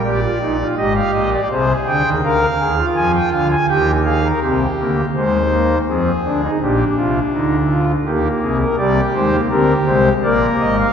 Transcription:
<<
  \new Staff \with { instrumentName = "Pipe organ" } { \time 3/4 \key ees \major \tempo 4 = 82 << { d''4 ees''16 f''16 ees''16 d''16 c''8 g''8 | f''4 aes''16 g''16 f''16 aes''16 g''8 f''8 | r2. | r2. |
d''8 c''8 bes'8 c''8 d''8 ees''16 f''16 | } \\ { g'16 f'16 ees'16 f'16 g'4 aes'4 | bes'8 aes'16 f'4~ f'16 g'8 aes'16 bes'16 | g'4 c''4 aes'4 | g'8 f'8 ees'8 f'8 g'8 aes'16 bes'16 |
g'4 g'4 bes'4 | } >> }
  \new Staff \with { instrumentName = "Pipe organ" } { \clef bass \time 3/4 \key ees \major << { r2. | r2. | c'8 bes8 aes8 bes8 c'8 d'16 ees'16 | d'2 bes4 |
g8 aes16 bes16 c'8 aes8 bes4 | } \\ { <bes,, bes,>8 <bes,, bes,>8 <aes,, aes,>8 <bes,, bes,>8 <c, c>8 <d, d>16 <ees, ees>16 | <d, d>8 <ees, ees>8 <f, f>8 <d, d>8 <ees, ees>4 | <c, c>8 <d, d>8 <ees, ees>4 <f, f>8 <d, d>8 | <bes,, bes,>8 <c, c>8 <d, d>4 <ees, ees>8 <c, c>8 |
<c, c>8 <ees, ees>8 <d, d>8 <c, c>8 <bes,, bes,>8 <aes,, aes,>8 | } >> }
>>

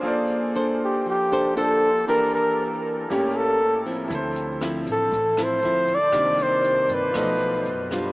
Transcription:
<<
  \new Staff \with { instrumentName = "Flugelhorn" } { \time 4/4 \key d \minor \tempo 4 = 118 r4. g'8 g'4 a'4 | bes'8 bes'4 r8 g'8 a'4 r8 | r4. a'4 c''4 d''8~ | d''8 c''4 b'2 r8 | }
  \new Staff \with { instrumentName = "Grand piano" } { \time 4/4 \key d \minor <bes f' a' c'' d''>2. <bes f' a' c'' d''>4 | <e g' bes' d''>2 <bes e' g' cis''>2 | <e' a' c''>1 | <g' bes' d''>2 <dis' eis' a' dis''>2 | }
  \new Staff \with { instrumentName = "Nylon-string guitar" } { \time 4/4 \key d \minor << { <d' a' c''>4 <d' a' c''>4. <d' a' c''>8 <d' a' c''>8 r8 | <bes d' g'>2 <g bes cis'>4 r8 <f c' e'>8~ | <f c' e'>4 <f c' e'>4 r8 <f c' e'>8 <f c' e'>8 r8 | <ees bes d'>2 <eis a dis'>4 r8 <g d' eis'>8 | } \\ { bes2 f2 | e2 a,2 | d2 a,2 | c2 b,2 | } >> }
  \new Staff \with { instrumentName = "Upright bass" } { \clef bass \time 4/4 \key d \minor r1 | r1 | d,4. a,,8 a,,4 d,4 | c,4. g,8 b,,4 fis,4 | }
  \new DrumStaff \with { instrumentName = "Drums" } \drummode { \time 4/4 r4 r4 r4 r4 | r4 r4 r4 r4 | <hh bd>8 hh8 <hh ss>8 <hh bd>8 <hh bd>8 <hh ss>8 hh8 <hh bd>8 | <hh bd ss>8 hh8 hh8 <hh bd>8 <hh bd ss>8 hh8 hh8 <hh bd ss>8 | }
>>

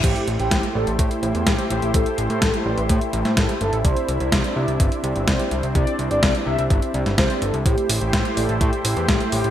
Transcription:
<<
  \new Staff \with { instrumentName = "Analog polysynth" } { \time 4/4 \key a \minor \tempo 4 = 126 g'8 r16 g'8 r16 a'16 r4 r16 g'16 r16 g'16 r16 | a'8 r16 a'8 r16 b'16 r4 r16 a'16 r16 a'16 r16 | c''8 r16 c''8 r16 d''16 r4 r16 c''16 r16 c''16 r16 | d''8 r16 d''8 r16 e''16 r4 r16 c''16 r16 a'16 r16 |
g'8 r16 g'8 r16 a'16 r4 r16 g'16 r16 g'16 r16 | }
  \new Staff \with { instrumentName = "Tine electric piano" } { \time 4/4 \key a \minor <a e' g' c''>8. <a e' g' c''>8. <a e' g' d''>4 <a e' g' c''>8. <a e' g' c''>16 r8 | <a e' g' c''>8. <a e' g' c''>8. <a e' g' d''>4 <a e' g' c''>8. <a e' g' c''>16 r8 | <c' e' g' d''>8. <c' e' g' d''>8. <c' e' g' e''>4 <c' e' g' d''>8. <c' e' g' d''>16 r8 | <c' e' g' d''>8. <c' e' g' d''>8. <c' e' g' e''>4 <c' e' g' d''>8. <c' e' g' d''>16 r8 |
<a e' g' c''>8. <a e' g' c''>8. <a e' g' d''>4 <a e' g' c''>8. <a e' g' c''>16 r8 | }
  \new Staff \with { instrumentName = "Analog synth pad" } { \time 4/4 \key a \minor << { <e' c''>1~ | <e' c''>1~ | <e' c''>1~ | <e' c''>1 |
c''1 | } \\ { <a g'>1~ | <a g'>1 | <c' d'>1~ | <c' d'>1 |
<a e' g'>1 | } >> }
  \new Staff \with { instrumentName = "Analog synth bass" } { \clef bass \time 4/4 \key a \minor a,,16 r16 a,,16 a,,16 a,,16 r16 a,,16 a,,16 a,16 r16 a,,16 e,16 a,,16 r16 a,,16 a,,16 | a,,16 r16 a,,16 a,16 a,,16 r16 a,,16 a,,16 a,16 r16 a,,16 a,16 a,,16 r16 g,,16 a,,16 | c,16 r16 c,16 c,16 c,16 r16 c,16 c,16 g,,16 r16 c,16 g,,16 c,16 r16 c,16 c,16 | c,16 r16 c,16 g,,16 c,16 r16 c,16 c,16 g,,16 r16 c,16 g,,16 c,16 r16 g,,16 c,16 |
a,,16 r16 a,,16 a,,16 a,,16 r16 a,,16 a,,16 a,16 r16 a,,16 e,16 a,,16 r16 a,,16 a,,16 | }
  \new DrumStaff \with { instrumentName = "Drums" } \drummode { \time 4/4 <cymc hh bd>16 hh16 hh16 hh16 <hh bd sn>16 hh8 hh16 <hh bd>16 hh16 hh16 hh16 <hh bd sn>16 hh16 hh16 hh16 | <hh bd>16 hh16 hh16 hh16 <hh bd sn>16 hh8 hh16 <hh bd>16 hh16 hh16 <hh sn>16 <hh bd sn>16 hh16 hh16 hh16 | <hh bd>16 hh16 hh16 hh16 <hh bd sn>16 hh8 hh16 <hh bd>16 hh16 hh16 hh16 <hh bd sn>16 hh16 hh16 hh16 | <hh bd>16 hh16 hh16 hh16 <hh bd sn>16 hh8 hh16 <hh bd>16 hh16 hh16 <hh sn>16 <hh bd sn>16 hh16 hh16 hh16 |
<hh bd>16 hh16 hho16 hh16 <hh bd sn>16 hh16 hho16 hh16 <hh bd>16 hh16 hho16 hh16 <hh bd sn>16 hh16 hho16 hh16 | }
>>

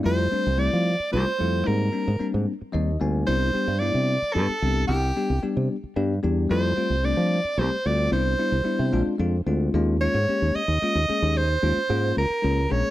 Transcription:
<<
  \new Staff \with { instrumentName = "Soprano saxophone" } { \time 6/8 \key c \major \tempo 4. = 74 c''4 d''4 c''4 | bes'4 r2 | c''4 d''4 a'4 | g'4 r2 |
c''4 d''4 c''8 d''8 | c''2 r4 | \key ees \mixolydian r8 des''4 ees''4. | c''4. bes'4 des''8 | }
  \new Staff \with { instrumentName = "Tine electric piano" } { \time 6/8 \key c \major <g a c' e'>8 <g a c' d'>8 <g a c' e'>8 r8 <g a c' f'>8 <g a c' e'>8 | <g bes c' ees'>8 <g bes c' d'>8 <g bes c' d'>8 r8 <g bes c' ees' ees''>8 <g bes c' ees' aes''>8 | <g b d' e'>8 <g b d' g'>8 <g b d' e'>8 r8 <g b d' g'>8 <g b d' g'>8 | r8 <g b d' g'>8 <g b d' g'>8 r8 <g b d' g'>8 <g b d' g'>8 |
<g a c' e'>8 <g a c' f'>8 <g a c' d'>8 r8 <g a c' g'>8 <g a c' f'>8 | <g b d' e'>8 <g b d' e'>8 <g b d' e'>8 <aes c' d' f'>8 <aes c' d' f'>8 <aes c' d' f'>8 | \key ees \mixolydian <aes bes des' f'>8 <aes bes des' f'>8 <aes bes des' g'>8 r8 <aes bes des' f'>8 <aes bes des' aes'>8 | r8 <aes bes des' f'>8 <aes bes des' f'>8 r8 <aes bes des' aes'>8 <aes bes des' aes'>8 | }
  \new Staff \with { instrumentName = "Fingered electric bass" } { \clef bass \time 6/8 \key c \major f,8 r16 c,8 f8 r16 c,16 r16 f,8 | aes,8 r16 aes,16 r16 aes,16 r8 ees,8 d,8 | c,8 r16 g,8 c8 r16 g,16 r16 c,8 | c,8 r16 c,16 r16 c16 r8 g,8 e,8 |
f,8 r16 c,8 f8 r16 c,16 r16 d,8 | c,8 r16 c,16 r16 c16 bes,,16 r16 f,8 d,8 | \key ees \mixolydian ees,8. aes,16 r16 ees,16 r16 ees,16 r16 ees,16 r16 ees,16~ | ees,8 ees,16 r16 aes,8 des,16 r16 des,8 bes,,16 r16 | }
>>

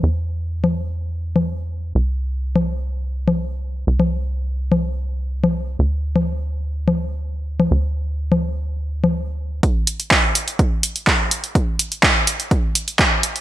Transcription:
<<
  \new Staff \with { instrumentName = "Analog synth bass" } { \clef bass \time 4/4 \key c \lydian \tempo 4 = 125 e,1 | c,1 | c,1 | d,1 |
d,1 | r1 | r1 | }
  \new DrumStaff \with { instrumentName = "Drums" } \drummode { \time 4/4 r4 r16 cgl8. r8. cgl16 r4 | r4 r16 cgl8. r8. cgl16 r4 | r16 cgl8. r8. cgl16 r4 r16 cgl8. | r8. cgl16 r4 r16 cgl8. r8. cgl16 |
r4 r16 cgl8. r8. cgl16 r4 | <hh bd>8 hh16 hh16 <hc hh bd>8 hh16 hh16 <hh bd>8 hh16 hh16 <hc hh bd>8 hh16 hh16 | <hh bd>8 hh16 hh16 <hc hh bd>8 hh16 hh16 <hh bd>8 hh16 hh16 <hc hh bd>8 hh16 hh16 | }
>>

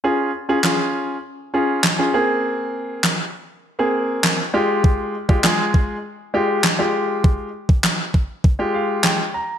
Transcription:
<<
  \new Staff \with { instrumentName = "Grand piano" } { \time 4/4 \key f \minor \tempo 4 = 100 << { r1 | r1 | r1 | r2 r8 f''8 g''8 bes''8 | } \\ { <des' f' aes'>8 r16 <des' f' aes'>16 <des' f' aes'>8. r8. <des' f' aes'>8 r16 <des' f' aes'>16 <bes c' aes'>8~ | <bes c' aes'>4 r4 r16 <bes c' aes'>4 r16 <aes f' g'>8~ | <aes f' g'>8 r16 <aes f' g'>16 <aes f' aes'>8. r8. <aes f' g'>8 r16 <aes f' g'>8.~ | <aes f' g'>8 r4. r16 <aes f' g'>4 r8. | } >> }
  \new DrumStaff \with { instrumentName = "Drums" } \drummode { \time 4/4 r4 <hc sn>4 r4 <hc sn>4 | r4 <hc sn>4 r4 <hc sn>4 | bd8. bd16 <hc sn>8 bd8 r4 <hc sn>4 | bd8. bd16 <hc sn>8 bd8 bd4 <hc sn>4 | }
>>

